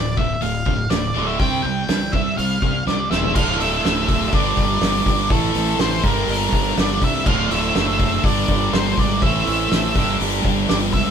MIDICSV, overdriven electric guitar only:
0, 0, Header, 1, 2, 480
1, 0, Start_track
1, 0, Tempo, 488599
1, 1376, Time_signature, 4, 2, 24, 8
1, 10911, End_track
2, 0, Start_track
2, 0, Title_t, "Overdriven electric guitar"
2, 0, Program_c, 0, 29
2, 0, Note_on_c, 0, 38, 73
2, 0, Note_on_c, 0, 45, 74
2, 145, Note_off_c, 0, 38, 0
2, 149, Note_off_c, 0, 45, 0
2, 175, Note_on_c, 0, 38, 64
2, 180, Note_on_c, 0, 45, 69
2, 392, Note_off_c, 0, 38, 0
2, 394, Note_off_c, 0, 45, 0
2, 414, Note_on_c, 0, 38, 75
2, 418, Note_on_c, 0, 45, 82
2, 631, Note_off_c, 0, 38, 0
2, 633, Note_off_c, 0, 45, 0
2, 661, Note_on_c, 0, 38, 67
2, 663, Note_on_c, 0, 45, 79
2, 875, Note_off_c, 0, 38, 0
2, 876, Note_off_c, 0, 45, 0
2, 896, Note_on_c, 0, 38, 74
2, 899, Note_on_c, 0, 45, 91
2, 1112, Note_off_c, 0, 38, 0
2, 1114, Note_off_c, 0, 45, 0
2, 1140, Note_on_c, 0, 38, 91
2, 1145, Note_on_c, 0, 45, 87
2, 1148, Note_on_c, 0, 50, 95
2, 1364, Note_off_c, 0, 38, 0
2, 1367, Note_off_c, 0, 45, 0
2, 1368, Note_off_c, 0, 50, 0
2, 1379, Note_on_c, 0, 48, 86
2, 1387, Note_on_c, 0, 55, 102
2, 1390, Note_on_c, 0, 60, 101
2, 1603, Note_off_c, 0, 48, 0
2, 1607, Note_off_c, 0, 55, 0
2, 1609, Note_off_c, 0, 60, 0
2, 1616, Note_on_c, 0, 48, 76
2, 1621, Note_on_c, 0, 55, 90
2, 1832, Note_off_c, 0, 48, 0
2, 1835, Note_off_c, 0, 55, 0
2, 1858, Note_on_c, 0, 48, 73
2, 1860, Note_on_c, 0, 55, 83
2, 2073, Note_off_c, 0, 48, 0
2, 2074, Note_off_c, 0, 55, 0
2, 2091, Note_on_c, 0, 48, 65
2, 2096, Note_on_c, 0, 55, 77
2, 2310, Note_off_c, 0, 48, 0
2, 2312, Note_off_c, 0, 55, 0
2, 2334, Note_on_c, 0, 48, 69
2, 2339, Note_on_c, 0, 55, 74
2, 2551, Note_off_c, 0, 48, 0
2, 2554, Note_off_c, 0, 55, 0
2, 2577, Note_on_c, 0, 48, 70
2, 2583, Note_on_c, 0, 55, 80
2, 2793, Note_off_c, 0, 48, 0
2, 2796, Note_off_c, 0, 55, 0
2, 2820, Note_on_c, 0, 48, 78
2, 2825, Note_on_c, 0, 55, 84
2, 3034, Note_off_c, 0, 48, 0
2, 3037, Note_off_c, 0, 55, 0
2, 3062, Note_on_c, 0, 48, 93
2, 3069, Note_on_c, 0, 55, 99
2, 3071, Note_on_c, 0, 60, 101
2, 3285, Note_off_c, 0, 48, 0
2, 3288, Note_off_c, 0, 55, 0
2, 3289, Note_off_c, 0, 60, 0
2, 3290, Note_on_c, 0, 38, 95
2, 3301, Note_on_c, 0, 45, 101
2, 3318, Note_on_c, 0, 50, 102
2, 4239, Note_off_c, 0, 38, 0
2, 4245, Note_off_c, 0, 45, 0
2, 4253, Note_off_c, 0, 50, 0
2, 4257, Note_on_c, 0, 43, 94
2, 4268, Note_on_c, 0, 50, 90
2, 4281, Note_on_c, 0, 55, 93
2, 5201, Note_off_c, 0, 43, 0
2, 5205, Note_on_c, 0, 45, 86
2, 5208, Note_off_c, 0, 50, 0
2, 5215, Note_off_c, 0, 55, 0
2, 5223, Note_on_c, 0, 52, 103
2, 5234, Note_on_c, 0, 57, 91
2, 5917, Note_off_c, 0, 45, 0
2, 5925, Note_off_c, 0, 52, 0
2, 5928, Note_on_c, 0, 43, 86
2, 5931, Note_off_c, 0, 57, 0
2, 5942, Note_on_c, 0, 50, 86
2, 5957, Note_on_c, 0, 55, 97
2, 7118, Note_off_c, 0, 43, 0
2, 7126, Note_off_c, 0, 50, 0
2, 7127, Note_on_c, 0, 38, 102
2, 7133, Note_off_c, 0, 55, 0
2, 7145, Note_on_c, 0, 45, 104
2, 7155, Note_on_c, 0, 50, 105
2, 8078, Note_off_c, 0, 38, 0
2, 8087, Note_off_c, 0, 45, 0
2, 8092, Note_off_c, 0, 50, 0
2, 8092, Note_on_c, 0, 43, 92
2, 8105, Note_on_c, 0, 50, 96
2, 8116, Note_on_c, 0, 55, 95
2, 9041, Note_off_c, 0, 43, 0
2, 9048, Note_off_c, 0, 50, 0
2, 9054, Note_off_c, 0, 55, 0
2, 9062, Note_on_c, 0, 45, 89
2, 9079, Note_on_c, 0, 52, 103
2, 9091, Note_on_c, 0, 57, 104
2, 9767, Note_off_c, 0, 45, 0
2, 9775, Note_off_c, 0, 52, 0
2, 9777, Note_on_c, 0, 43, 77
2, 9781, Note_off_c, 0, 57, 0
2, 9791, Note_on_c, 0, 50, 90
2, 9803, Note_on_c, 0, 55, 101
2, 10911, Note_off_c, 0, 43, 0
2, 10911, Note_off_c, 0, 50, 0
2, 10911, Note_off_c, 0, 55, 0
2, 10911, End_track
0, 0, End_of_file